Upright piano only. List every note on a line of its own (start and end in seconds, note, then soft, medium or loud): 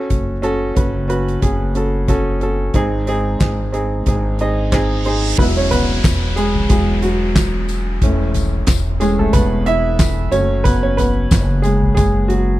0.00 0.32 C#4 medium
0.00 0.33 F#4 medium
0.00 0.33 A4 medium
0.42 0.71 C#4 medium
0.42 0.71 F#4 medium
0.42 0.71 A4 loud
0.75 1.04 C#4 medium
0.75 1.04 F#4 medium
0.75 1.04 B4 medium
1.08 1.36 C#4 medium
1.08 1.37 F#4 medium
1.08 1.37 B4 medium
1.41 1.70 C#4 medium
1.41 1.70 F#4 medium
1.41 1.70 G#4 medium
1.75 2.03 C#4 medium
1.75 2.03 F#4 medium
1.75 2.04 A4 medium
2.08 2.36 C#4 medium
2.08 2.36 F#4 medium
2.08 2.37 A4 medium
2.41 2.69 C#4 medium
2.41 2.69 F#4 medium
2.41 2.70 A4 medium
2.74 3.70 G#2 medium
2.74 3.02 C4 medium
2.74 3.02 D#4 medium
2.74 3.03 G#4 loud
3.07 3.35 C4 medium
3.07 3.35 D#4 medium
3.07 3.36 G#4 medium
3.39 3.67 C4 medium
3.39 3.68 D#4 medium
3.39 3.68 G#4 medium
3.72 4.00 C4 medium
3.72 4.01 D#4 medium
3.72 4.01 G#4 medium
4.06 4.34 C4 medium
4.06 4.34 D#4 medium
4.06 4.35 G#4 medium
4.40 4.67 C4 medium
4.40 4.71 D#4 medium
4.40 4.68 G#4 medium
4.40 5.02 D#5 loud
4.72 5.00 C4 medium
4.72 5.00 D#4 medium
4.72 5.01 G#4 medium
5.05 5.37 C4 medium
5.05 5.33 D#4 medium
5.05 5.34 G#4 medium
5.05 5.39 C5 medium
5.39 5.84 F#3 medium
5.39 5.84 G#3 soft
5.39 5.45 B3 medium
5.39 5.84 E4 medium
5.39 5.44 B4 loud
5.57 5.63 C#4 medium
5.57 5.62 C#5 medium
5.71 6.34 B3 medium
5.71 6.39 B4 loud
6.36 6.68 G#3 medium
6.36 6.68 G#4 medium
6.69 7.00 F#3 soft
6.69 6.79 G#3 medium
6.69 7.00 E4 soft
6.69 6.77 G#4 medium
7.02 7.65 F#3 medium
7.02 7.64 F#4 medium
8.02 8.99 E3 medium
8.02 9.00 A3 soft
8.02 9.00 C#4 medium
9.00 9.30 E3 medium
9.00 9.18 G#3 medium
9.00 9.19 A3 soft
9.00 9.30 C#4 medium
9.00 9.17 G#4 medium
9.19 9.26 A3 medium
9.19 9.24 A4 medium
9.33 9.65 B3 medium
9.33 9.67 B4 medium
9.66 10.29 E4 medium
9.66 10.34 E5 loud
10.32 11.27 F#3 medium
10.32 11.27 A3 medium
10.32 10.63 C#4 medium
10.32 10.66 C#5 loud
10.64 10.83 B3 medium
10.64 10.83 B4 loud
10.83 10.98 C#4 medium
10.83 10.97 C#5 medium
10.97 11.61 B3 medium
10.97 11.59 B4 medium
11.62 11.72 G#3 medium
11.62 11.70 G#4 medium
11.95 12.28 G#3 medium
11.95 12.30 G#4 medium
12.28 12.60 F#3 medium
12.28 12.60 F#4 medium